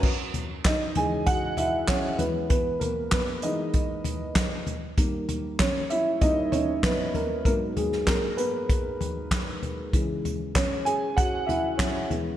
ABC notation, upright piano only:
X:1
M:4/4
L:1/8
Q:1/4=97
K:C#dor
V:1 name="Upright piano"
z2 [Dd] [Gg] [Ff] [Ee] [Cc] B | [B,B] [A,A] [B,B] [Dd]4 z | z2 [Cc] [Ee] [Dd] [Cc] [B,B] [A,A] | [A,A] [G,G] [A,A] [B,B]4 z |
z2 [Cc] [Gg] [Ff] [Ee] [Cc] z |]
V:2 name="Upright piano" clef=bass
z3 [C,E,G,]4 [E,G,B,]- | [E,G,B,]3 [E,G,B,] z4 | [D,=G,A,] z3 [D,G,A,] z3 | [G,,F,B,]8 |
[C,E,G,]3 z4 [E,G,B,] |]